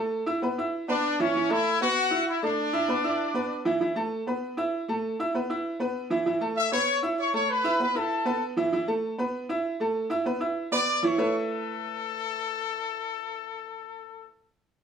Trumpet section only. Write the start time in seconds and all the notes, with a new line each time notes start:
0.88 D4 D5
1.19 C#4 C#5
1.50 E4 E5
1.81 F#4 F#5
2.29 E4 E5
2.43 D4 D5
6.57 E5 E6
6.72 C#5 C#6
7.18 C#5 C#6
7.34 C#5 C#6
7.49 B4 B5
7.81 B4 B5
7.96 A4 A5
10.73 D5 D6
11.04 C#5 C#6
11.19 A4